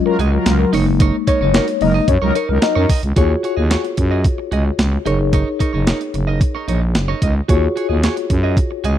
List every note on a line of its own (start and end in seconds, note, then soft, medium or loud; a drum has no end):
0.00 0.16 F#3 medium
0.00 0.16 G#3 medium
0.00 0.16 C#4 soft
0.00 0.17 F4 medium
0.00 0.51 D#5 medium
0.05 0.17 F#3 loud
0.05 0.17 F4 loud
0.05 0.17 A#4 loud
0.05 muted clean electric guitar stroke medium
0.19 0.38 C#2 medium
0.19 0.34 F#4 medium
0.19 0.32 G#4 medium
0.19 0.32 D#5 medium
0.19 closed hi-hat medium
0.32 0.71 F#3 loud
0.32 0.71 F4 medium
0.32 0.71 A#4 loud
0.32 muted clean electric guitar stroke soft
0.46 0.65 C#2 loud
0.46 muted clean electric guitar stroke soft
0.46 snare loud
0.46 closed hi-hat medium
0.60 muted clean electric guitar stroke medium
0.72 1.12 F#1 medium
0.72 1.80 G#3 medium
0.72 1.80 A#3 medium
0.72 0.88 D#4 medium
0.72 1.81 D#4 medium
0.72 0.87 A#4 medium
0.72 0.85 C#5 loud
0.72 open hi-hat medium
0.87 muted clean electric guitar stroke soft
1.00 1.15 D#4 medium
1.00 1.16 A#4 medium
1.00 1.16 C#5 medium
1.00 kick loud
1.00 closed hi-hat medium
1.27 1.39 D#4 medium
1.27 1.39 A#4 medium
1.27 1.83 C#5 loud
1.27 1.40 C#5 medium
1.27 kick medium
1.27 closed hi-hat medium
1.41 1.60 F#1 medium
1.41 1.53 D#4 medium
1.41 1.53 A#4 medium
1.41 1.52 C#5 medium
1.54 1.66 F#3 medium
1.54 1.69 D#4 medium
1.54 1.66 D#4 medium
1.54 1.66 A#4 medium
1.54 1.68 A#4 medium
1.54 1.67 C#5 medium
1.54 snare loud
1.54 closed hi-hat medium
1.68 muted clean electric guitar stroke soft
1.68 closed hi-hat medium
1.81 2.00 F#1 medium
1.81 1.93 F#3 loud
1.81 2.06 G#3 medium
1.81 2.06 A#3 soft
1.81 1.93 D#4 medium
1.81 2.06 D#4 medium
1.81 1.93 A#4 loud
1.81 2.09 D#5 loud
1.81 muted clean electric guitar stroke soft
1.81 open hi-hat medium
1.94 2.07 D#4 soft
1.94 2.07 A#4 medium
1.94 2.06 D#5 medium
2.08 2.18 F#2 loud
2.08 2.36 C#5 loud
2.08 muted clean electric guitar stroke soft
2.08 kick loud
2.08 closed hi-hat medium
2.22 2.32 C#2 medium
2.22 2.33 F#3 loud
2.22 2.33 D#4 loud
2.22 2.34 D#4 soft
2.22 2.33 A#4 loud
2.22 2.34 A#4 medium
2.22 2.33 C#5 medium
2.35 2.50 D#4 medium
2.35 2.49 A#4 medium
2.35 2.48 A#4 medium
2.35 2.48 C#5 loud
2.35 closed hi-hat medium
2.49 2.59 C#2 medium
2.49 2.88 F#3 medium
2.49 2.88 D#4 medium
2.49 2.63 A#4 medium
2.49 2.88 A#4 loud
2.49 muted clean electric guitar stroke soft
2.62 2.88 D#5 medium
2.62 muted clean electric guitar stroke soft
2.62 snare loud
2.62 closed hi-hat medium
2.75 2.86 F#2 loud
2.75 2.88 D#4 medium
2.75 2.89 A#4 medium
2.75 2.90 C#5 medium
2.89 3.01 D#4 medium
2.89 3.01 A#4 medium
2.89 3.02 D#5 medium
2.89 kick loud
2.89 open hi-hat medium
3.03 3.13 C#2 medium
3.03 muted clean electric guitar stroke soft
3.03 closed hi-hat medium
3.16 3.36 D#2 loud
3.16 5.02 F4 medium
3.16 3.31 F#4 medium
3.16 5.02 F#4 medium
3.16 5.02 G#4 medium
3.16 3.32 G#4 medium
3.16 5.02 C#5 medium
3.16 3.32 C#5 medium
3.16 kick loud
3.16 closed hi-hat medium
3.43 3.55 F#4 medium
3.43 3.55 G#4 medium
3.43 3.56 C#5 medium
3.43 closed hi-hat medium
3.57 3.76 D#2 loud
3.57 3.69 F#4 soft
3.57 3.69 G#4 medium
3.57 3.68 D#5 medium
3.70 3.85 F#4 medium
3.70 3.84 G#4 medium
3.70 3.83 C#5 medium
3.70 snare loud
3.70 closed hi-hat medium
3.84 muted clean electric guitar stroke soft
3.84 closed hi-hat medium
3.97 4.26 F#2 medium
3.97 muted clean electric guitar stroke soft
3.97 kick medium
3.97 closed hi-hat medium
4.11 4.23 F#4 medium
4.11 4.23 G#4 medium
4.11 4.23 D#5 medium
4.24 kick loud
4.24 closed hi-hat medium
4.38 muted clean electric guitar stroke soft
4.51 4.71 C#2 medium
4.51 4.66 F#4 medium
4.51 4.65 G#4 medium
4.51 4.65 D#5 medium
4.51 closed hi-hat medium
4.65 muted clean electric guitar stroke soft
4.79 4.98 C#2 medium
4.79 muted clean electric guitar stroke soft
4.79 snare loud
4.79 closed hi-hat medium
4.92 muted clean electric guitar stroke soft
5.05 5.44 F#1 medium
5.05 5.20 D#4 medium
5.05 7.18 D#4 medium
5.05 7.18 G#4 medium
5.05 5.19 A#4 medium
5.05 7.18 A#4 medium
5.05 7.19 C#5 medium
5.05 5.18 C#5 medium
5.05 closed hi-hat medium
5.19 muted clean electric guitar stroke soft
5.33 5.48 D#4 medium
5.33 5.48 A#4 medium
5.33 5.48 C#5 medium
5.33 kick loud
5.33 closed hi-hat medium
5.59 5.71 D#4 medium
5.59 5.72 A#4 medium
5.59 5.72 C#5 medium
5.59 kick medium
5.59 closed hi-hat medium
5.73 5.93 F#1 medium
5.73 5.85 D#4 medium
5.73 5.85 A#4 medium
5.73 5.85 C#5 medium
5.87 6.02 D#4 medium
5.87 6.00 A#4 medium
5.87 5.99 C#5 medium
5.87 snare loud
5.87 closed hi-hat medium
6.00 muted clean electric guitar stroke soft
6.00 closed hi-hat medium
6.14 6.43 F#1 medium
6.14 muted clean electric guitar stroke soft
6.14 closed hi-hat medium
6.27 6.40 D#4 medium
6.27 6.39 A#4 medium
6.27 6.39 D#5 medium
6.41 muted clean electric guitar stroke soft
6.41 kick loud
6.41 closed hi-hat medium
6.55 6.66 D#4 medium
6.55 6.66 A#4 medium
6.55 6.66 C#5 medium
6.68 6.96 A#1 medium
6.68 6.83 D#4 medium
6.68 6.81 A#4 medium
6.68 6.80 C#5 medium
6.68 closed hi-hat medium
6.81 muted clean electric guitar stroke soft
6.95 7.14 F#1 medium
6.95 muted clean electric guitar stroke soft
6.95 snare loud
6.95 closed hi-hat medium
7.08 7.21 D#4 medium
7.08 7.22 A#4 medium
7.08 7.23 C#5 medium
7.22 7.41 C#2 medium
7.22 7.33 D#4 medium
7.22 7.34 A#4 medium
7.22 7.34 D#5 medium
7.22 kick medium
7.22 closed hi-hat medium
7.36 muted clean electric guitar stroke soft
7.48 7.68 D#2 loud
7.48 8.98 F4 medium
7.48 7.64 F#4 medium
7.48 8.98 F#4 medium
7.48 7.64 G#4 medium
7.48 8.98 G#4 medium
7.48 8.98 C#5 medium
7.48 7.64 C#5 medium
7.48 kick loud
7.48 closed hi-hat medium
7.76 7.87 F#4 medium
7.76 7.88 G#4 medium
7.76 7.88 C#5 medium
7.76 closed hi-hat medium
7.89 8.09 D#2 medium
7.89 8.02 F#4 medium
7.89 8.01 G#4 medium
7.89 8.01 D#5 medium
8.03 8.18 F#4 medium
8.03 8.17 G#4 medium
8.03 8.15 C#5 medium
8.03 snare medium
8.03 closed hi-hat medium
8.17 muted clean electric guitar stroke soft
8.17 closed hi-hat medium
8.30 8.59 F#2 medium
8.30 muted clean electric guitar stroke soft
8.30 kick medium
8.30 closed hi-hat medium
8.43 8.56 F#4 soft
8.43 8.56 G#4 soft
8.43 8.55 D#5 medium
8.57 kick loud
8.57 closed hi-hat medium
8.71 muted clean electric guitar stroke soft
8.84 8.98 C#2 medium
8.84 8.98 F#4 medium
8.84 8.98 G#4 medium
8.84 8.97 D#5 medium
8.84 closed hi-hat medium